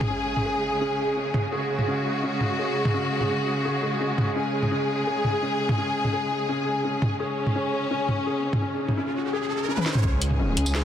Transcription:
Already playing: C#3 G#3 C#4 G#4
0.01 mid tom
0.10 C#4
0.37 mid tom
0.45 G#4
0.81 C#4
1.16 C#4
1.34 mid tom
1.52 F#4 G#4
1.79 mid tom
1.87 C#4
2.23 C#4
2.41 mid tom
2.58 G#4
2.85 mid tom
2.94 C#4
3.21 mid tom
3.29 C#4
3.65 G#4
3.83 G#4
4.00 C#4
4.18 mid tom
4.36 C#4 G#4
4.63 mid tom
4.71 C#4
5.07 G#4
5.24 mid tom
5.42 C#4
5.69 mid tom
5.78 C#4
6.05 mid tom
6.13 G#4
6.49 C#4
6.84 C#4
7.02 mid tom
7.20 C#4 G#4, riser
7.47 mid tom
7.55 C#4
7.91 C#4
8.08 mid tom
8.26 G#4
8.53 mid tom
8.62 C#4
8.88 mid tom
8.97 C#4
9.33 G#4
9.68 C#4
9.77 high tom
9.86 C#4, snare
9.95 mid tom
10.04 C#2 C#3 G#3 C#4 G#4, kick
10.22 closed hi-hat
10.31 mid tom
10.39 C#4
10.57 C#2, closed hi-hat
10.66 tambourine
10.75 G#4, snare

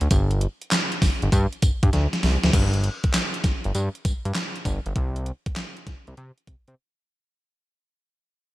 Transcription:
0.01 D2, closed hi-hat
0.11 G1, kick, closed hi-hat, tambourine
0.31 closed hi-hat
0.41 closed hi-hat
0.61 closed hi-hat
0.71 snare, clap, closed hi-hat, tambourine
0.92 closed hi-hat
1.02 G1, kick, snare, open hi-hat, tambourine
1.22 G1, closed hi-hat
1.32 G2, kick, closed hi-hat, tambourine
1.52 closed hi-hat
1.62 G2, kick, closed hi-hat, tambourine
1.83 G2, kick, closed hi-hat
1.93 D2, snare, closed hi-hat
2.13 snare, closed hi-hat
2.23 C2, snare, open hi-hat
2.44 D2, snare, closed hi-hat
2.53 G1, kick, closed hi-hat, crash, tambourine
2.74 closed hi-hat
2.84 closed hi-hat
3.04 kick, closed hi-hat
3.14 snare, clap, closed hi-hat, tambourine
3.34 closed hi-hat
3.44 G1, kick, snare, closed hi-hat, tambourine
3.64 G1, closed hi-hat
3.75 G2, closed hi-hat, tambourine
3.95 closed hi-hat
4.05 G2, kick, closed hi-hat, tambourine
4.25 G2, closed hi-hat
4.35 snare, clap, closed hi-hat, tambourine
4.56 closed hi-hat
4.65 G1, kick, closed hi-hat, tambourine
4.86 G1, closed hi-hat
4.96 C2, kick, closed hi-hat
5.16 closed hi-hat
5.26 closed hi-hat
5.46 kick, closed hi-hat
5.56 snare, clap, closed hi-hat
5.77 closed hi-hat
5.87 C2, kick, snare, closed hi-hat
6.07 C2, closed hi-hat
6.17 C3, closed hi-hat
6.38 closed hi-hat
6.47 C3, kick, closed hi-hat
6.68 C3, closed hi-hat

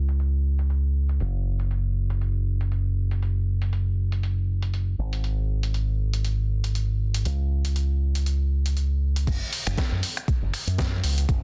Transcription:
Already playing: C#2
0.09 closed hi-hat
0.20 closed hi-hat
0.59 closed hi-hat
0.70 closed hi-hat
1.09 closed hi-hat
1.20 F#1, closed hi-hat
1.60 closed hi-hat
1.71 closed hi-hat
2.10 closed hi-hat
2.21 closed hi-hat
2.61 closed hi-hat
2.72 closed hi-hat
3.11 closed hi-hat
3.23 closed hi-hat
3.62 closed hi-hat
3.73 closed hi-hat
4.12 closed hi-hat
4.23 closed hi-hat
4.62 closed hi-hat
4.74 closed hi-hat
4.99 G#1
5.13 closed hi-hat
5.24 closed hi-hat
5.63 closed hi-hat
5.74 closed hi-hat
6.13 closed hi-hat
6.25 closed hi-hat
6.64 closed hi-hat
6.75 closed hi-hat
7.14 closed hi-hat
7.25 C#2, closed hi-hat
7.65 closed hi-hat
7.76 closed hi-hat
8.15 closed hi-hat
8.26 closed hi-hat
8.66 closed hi-hat
8.77 closed hi-hat
9.16 closed hi-hat
9.27 F#1, kick, closed hi-hat, crash
9.53 open hi-hat
9.67 F#1, finger snap, closed hi-hat
9.78 kick, snare, closed hi-hat
9.92 F#2
10.03 open hi-hat
10.17 finger snap, closed hi-hat
10.28 muted fingered electric bass stroke, kick, closed hi-hat
10.42 F#1
10.54 finger snap, open hi-hat
10.67 F#2, closed hi-hat
10.78 kick, snare, closed hi-hat
11.04 C#2, open hi-hat
11.18 closed hi-hat
11.29 F#1, kick, closed hi-hat

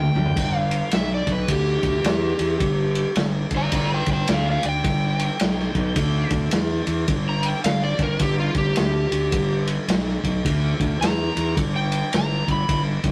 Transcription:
Already playing: G5
0.15 D2, mid tom
0.26 floor tom
0.36 G1, kick, ride, splash
0.56 F5
0.71 ride
0.91 B1 E5, snare, ride
1.14 D5
1.27 B1, kick, ride
1.32 B4
1.48 D2 G4, kick, ride
1.83 D2, kick, ride
2.04 E2, snare, ride
2.39 E2, ride
2.60 G1, kick, ride
2.95 ride
3.15 G1, snare, ride
3.51 G1, kick, ride
3.56 D5 A#5
3.72 G1 D5 A#5, kick, ride
3.93 B4 G5
4.06 G1, kick, ride
4.12 B4 G5
4.28 D2, snare, ride
4.32 D5 F5
4.50 D5 F5
4.63 D2, ride
4.69 G5
4.84 G1, kick, ride
5.19 ride
5.40 B1, snare, ride
5.59 snare
5.75 B1, kick, ride
5.96 D2, kick, ride
6.30 D2, kick, ride
6.51 E2, snare, ride
6.87 E2, ride
7.08 G1, kick, ride
7.29 A#5
7.43 G5, ride
7.64 G1 F5, snare, ride
7.84 D5
7.99 G1 A#4, kick, ride
8.19 G1 G4, kick, ride
8.40 F4
8.55 G1 G4, kick, ride
8.76 D2, snare, ride
9.12 D2, ride
9.32 G1, kick, ride
9.67 ride
9.88 B1, snare, ride
10.08 snare
10.24 B1, kick, ride
10.45 D2, kick, ride
10.80 D2, kick, ride
11.01 E2 A#5, snare, ride
11.37 E2, ride
11.57 G1, kick, ride
11.76 G5
11.92 ride
12.13 G1 A#5, snare, ride
12.48 G1 B5, kick, ride
12.69 G1, kick, ride
13.04 G1, kick, ride

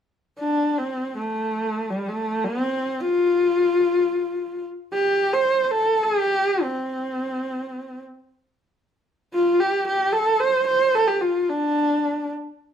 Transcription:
0.39 D4
0.79 C4
1.18 A3
1.90 G3
2.09 A3
2.45 C4
3.01 F4
4.94 G4
5.33 C5
5.64 C5
5.71 A4
6.03 G4
6.64 C4
9.34 F4
9.61 G4
9.88 G4
10.13 A4
10.40 C5
10.67 C5
10.95 A4
11.08 G4
11.21 F4
11.50 D4

